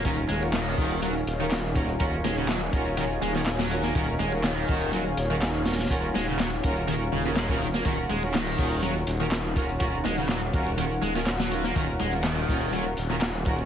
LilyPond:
<<
  \new Staff \with { instrumentName = "Analog synth pad" } { \time 4/4 \key ees \minor \tempo 4 = 123 << { aes''1~ | aes''1~ | aes''1~ | aes''1 |
ges''1~ | ges''1~ | ges''1 | } \\ { <ees' des'' f''>1~ | <ees' des'' f''>1~ | <ees' des'' f''>1~ | <ees' des'' f''>1~ |
<ees' des'' f''>1~ | <ees' des'' f''>1~ | <ees' des'' f''>1 | } >> }
  \new Staff \with { instrumentName = "String section" } { \time 4/4 \key ees \minor <des' f' ges' bes'>16 r8 <des' f' ges' bes'>16 r8 <des' f' ges' bes'>8 <des' f' ges' bes'>16 r8 <des' f' ges' bes'>16 r8 <des' f' ges' bes'>16 r16 | <des' f' ges' bes'>16 r8 <des' f' ges' bes'>16 r8 <des' f' ges' bes'>8 <des' f' ges' bes'>16 r8 <des' f' ges' bes'>16 r8 <des' f' ges' bes'>16 r16 | <des' f' ges' bes'>16 r8 <des' f' ges' bes'>16 r8 <des' f' ges' bes'>8 <des' f' ges' bes'>16 r8 <des' f' ges' bes'>16 r8 <des' f' ges' bes'>16 r16 | <des' f' ges' bes'>16 r8 <des' f' ges' bes'>16 r8 <des' f' ges' bes'>8 <des' f' ges' bes'>16 r8 <des' f' ges' bes'>16 r16 <des' f' ges' bes'>16 r8 |
<des' f' ges' bes'>16 r8 <des' f' ges' bes'>16 r8 <des' f' ges' bes'>8 <des' f' ges' bes'>16 r8 <des' f' ges' bes'>16 r8 <des' f' ges' bes'>16 r16 | <des' f' ges' bes'>16 r8 <des' f' ges' bes'>16 r8 <des' f' ges' bes'>8 <des' f' ges' bes'>16 r8 <des' f' ges' bes'>16 r8 <des' f' ges' bes'>16 r16 | <des' f' ges' bes'>16 r8 <des' f' ges' bes'>16 r8 <des' f' ges' bes'>8 <des' f' ges' bes'>16 r8 <des' f' ges' bes'>16 r8 <des' f' ges' bes'>16 r16 | }
  \new Staff \with { instrumentName = "Distorted electric guitar" } { \clef bass \time 4/4 \key ees \minor ees16 r16 aes16 r16 ees4 ges16 r8 ees16 r4 | r8 aes16 des16 ges16 r8. ees16 r16 aes16 ees16 r16 ges8 bes16 | ees16 r16 aes16 r16 ees4 ges16 r8 ees16 r4 | r8 aes16 des16 ges16 r8. ees16 r16 des16 des16 aes16 des16 ees16 bes16 |
ees16 r16 aes16 r16 ees4 ges16 r8 ees16 r4 | r8 aes16 des16 ges16 r8. ees16 r16 aes16 ees16 r16 ges8 bes16 | ees16 r16 aes16 r16 ees4 ges16 r8 ees16 r4 | }
  \new Staff \with { instrumentName = "Detuned saw bass" } { \clef bass \time 4/4 \key ees \minor ees,,8 ees,,4 ees,,4 ees,,4. | ees,,8 ees,,4 ees,,4 ees,,4. | ees,,8 ees,,4 ees,,4 ees,,4. | ees,,8 ees,,4 ees,,4 ees,,4. |
ees,,8 ees,,4 ees,,4 ees,,4. | ees,,8 ees,,4 ees,,4 ees,,4. | ees,,8 ees,,4 ees,,4 ees,,4. | }
  \new DrumStaff \with { instrumentName = "Drums" } \drummode { \time 4/4 <hh bd tamb>16 tamb16 hh16 tamb16 <hc hh sn tamb>16 <hh tamb>16 <hho bd>16 tamb16 <hh tamb>16 tamb16 hh16 tamb16 <hc hh sn tamb>16 tamb16 <hh bd>16 tamb16 | <hh bd tamb>16 tamb16 <hh sn>16 tamb16 <hc hh sn tamb>16 tamb16 <hh bd>16 tamb16 <hh tamb>16 tamb16 hh16 <sn tamb>16 <hc hh sn tamb>16 <hh sn tamb>16 hh16 <sn tamb>16 | <hh bd tamb>16 tamb16 hh16 tamb16 <hc hh sn tamb>16 <hh tamb>16 <hho bd>16 tamb16 <hh tamb>16 tamb16 hh16 tamb16 <hc hh sn tamb>16 tamb16 <hh sn>32 <hh sn>32 <hh sn tamb>32 <hh sn>32 | <hh bd tamb>16 tamb16 <hh sn>16 tamb16 <hc hh sn tamb>16 tamb16 <hh bd>16 tamb16 <hh tamb>16 tamb8 tamb16 <hc hh sn tamb>16 <bd tamb>16 hh16 <sn tamb>16 |
<hh bd tamb>16 tamb16 hh16 tamb16 <hc hh sn tamb>16 <hh tamb>16 <hho bd>16 tamb16 <hh tamb>16 tamb16 hh16 tamb16 <hc hh sn tamb>16 tamb16 <hh bd>16 tamb16 | <hh bd tamb>16 tamb16 <hh sn>16 tamb16 <hc hh sn tamb>16 tamb16 <hh bd>16 tamb16 <hh tamb>16 tamb16 hh16 <sn tamb>16 <hc hh sn tamb>16 <hh sn tamb>16 hh16 <sn tamb>16 | <hh bd tamb>16 tamb16 hh16 tamb16 <hc hh sn tamb>16 <hh tamb>16 <hho bd>16 tamb16 <hh tamb>16 tamb16 hh16 tamb16 <hc hh sn tamb>16 tamb16 <hh bd>16 tamb16 | }
>>